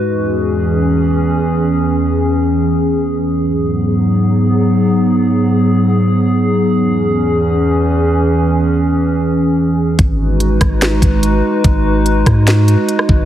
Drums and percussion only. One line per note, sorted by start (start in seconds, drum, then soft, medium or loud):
9.99 kick loud
9.99 closed hi-hat medium
10.40 closed hi-hat medium
10.61 kick loud
10.61 cross-stick medium
10.61 closed hi-hat medium
10.82 snare loud
10.82 closed hi-hat medium
11.02 kick medium
11.02 closed hi-hat medium
11.23 closed hi-hat medium
11.64 kick loud
11.64 closed hi-hat medium
12.06 closed hi-hat medium
12.26 kick loud
12.26 cross-stick loud
12.26 closed hi-hat medium
12.47 snare loud
12.47 closed hi-hat medium
12.68 closed hi-hat medium
12.89 closed hi-hat medium
12.99 cross-stick medium
13.09 kick loud